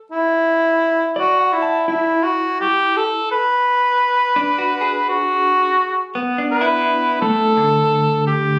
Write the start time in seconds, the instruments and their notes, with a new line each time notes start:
0.12 cor anglais E4
1.16 cor anglais F#4, clean electric guitar D5
1.39 clean electric guitar F#5
1.53 cor anglais E4
1.62 clean electric guitar A5
1.88 cor anglais E4, clean electric guitar E4
2.23 cor anglais F#4
2.61 cor anglais G4
2.96 cor anglais A4
3.31 cor anglais B4
4.36 clean electric guitar D4
4.58 clean electric guitar F#4
4.81 clean electric guitar G#4
5.09 cor anglais F#4
6.15 clean electric guitar B3
6.38 clean electric guitar D4
6.51 cor anglais B4
6.61 clean electric guitar E4
7.21 clean electric guitar A3, cor anglais A4
7.57 clean electric guitar D3
8.27 cor anglais G4